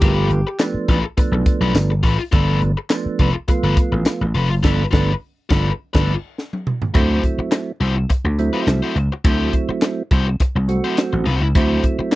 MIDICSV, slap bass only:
0, 0, Header, 1, 3, 480
1, 0, Start_track
1, 0, Tempo, 576369
1, 17, Time_signature, 4, 2, 24, 8
1, 10121, End_track
2, 0, Start_track
2, 0, Title_t, "Slap bass"
2, 0, Program_c, 0, 36
2, 15, Note_on_c, 0, 31, 113
2, 208, Note_off_c, 0, 31, 0
2, 249, Note_on_c, 0, 31, 93
2, 354, Note_off_c, 0, 31, 0
2, 735, Note_on_c, 0, 33, 106
2, 838, Note_off_c, 0, 33, 0
2, 1097, Note_on_c, 0, 35, 102
2, 1190, Note_off_c, 0, 35, 0
2, 1337, Note_on_c, 0, 35, 97
2, 1431, Note_off_c, 0, 35, 0
2, 1452, Note_on_c, 0, 31, 96
2, 1693, Note_off_c, 0, 31, 0
2, 1693, Note_on_c, 0, 33, 98
2, 1797, Note_off_c, 0, 33, 0
2, 1937, Note_on_c, 0, 31, 114
2, 2130, Note_off_c, 0, 31, 0
2, 2175, Note_on_c, 0, 31, 93
2, 2279, Note_off_c, 0, 31, 0
2, 2656, Note_on_c, 0, 29, 106
2, 2759, Note_off_c, 0, 29, 0
2, 3024, Note_on_c, 0, 31, 96
2, 3116, Note_off_c, 0, 31, 0
2, 3265, Note_on_c, 0, 33, 89
2, 3356, Note_off_c, 0, 33, 0
2, 3506, Note_on_c, 0, 33, 74
2, 3597, Note_off_c, 0, 33, 0
2, 3619, Note_on_c, 0, 29, 92
2, 3746, Note_off_c, 0, 29, 0
2, 3746, Note_on_c, 0, 30, 98
2, 3837, Note_off_c, 0, 30, 0
2, 3863, Note_on_c, 0, 31, 102
2, 4028, Note_off_c, 0, 31, 0
2, 4103, Note_on_c, 0, 31, 91
2, 4268, Note_off_c, 0, 31, 0
2, 4586, Note_on_c, 0, 31, 106
2, 4750, Note_off_c, 0, 31, 0
2, 4952, Note_on_c, 0, 31, 106
2, 5112, Note_off_c, 0, 31, 0
2, 5785, Note_on_c, 0, 38, 97
2, 5977, Note_off_c, 0, 38, 0
2, 6499, Note_on_c, 0, 36, 91
2, 6693, Note_off_c, 0, 36, 0
2, 6866, Note_on_c, 0, 38, 97
2, 7060, Note_off_c, 0, 38, 0
2, 7219, Note_on_c, 0, 36, 88
2, 7323, Note_off_c, 0, 36, 0
2, 7458, Note_on_c, 0, 37, 99
2, 7562, Note_off_c, 0, 37, 0
2, 7698, Note_on_c, 0, 38, 116
2, 7892, Note_off_c, 0, 38, 0
2, 8419, Note_on_c, 0, 36, 90
2, 8613, Note_off_c, 0, 36, 0
2, 8789, Note_on_c, 0, 36, 84
2, 8981, Note_off_c, 0, 36, 0
2, 9269, Note_on_c, 0, 33, 86
2, 9359, Note_off_c, 0, 33, 0
2, 9382, Note_on_c, 0, 36, 99
2, 9483, Note_off_c, 0, 36, 0
2, 9505, Note_on_c, 0, 37, 92
2, 9597, Note_off_c, 0, 37, 0
2, 9620, Note_on_c, 0, 38, 109
2, 9812, Note_off_c, 0, 38, 0
2, 10121, End_track
3, 0, Start_track
3, 0, Title_t, "Muted slap bass strokes"
3, 619, Note_on_c, 9, 29, 51
3, 702, Note_off_c, 9, 29, 0
3, 2546, Note_on_c, 9, 29, 52
3, 2629, Note_off_c, 9, 29, 0
3, 6149, Note_on_c, 9, 29, 52
3, 6232, Note_off_c, 9, 29, 0
3, 6747, Note_on_c, 9, 29, 43
3, 6830, Note_off_c, 9, 29, 0
3, 8067, Note_on_c, 9, 29, 46
3, 8150, Note_off_c, 9, 29, 0
3, 8664, Note_on_c, 9, 29, 43
3, 8747, Note_off_c, 9, 29, 0
3, 9984, Note_on_c, 9, 29, 48
3, 10067, Note_off_c, 9, 29, 0
3, 10121, End_track
0, 0, End_of_file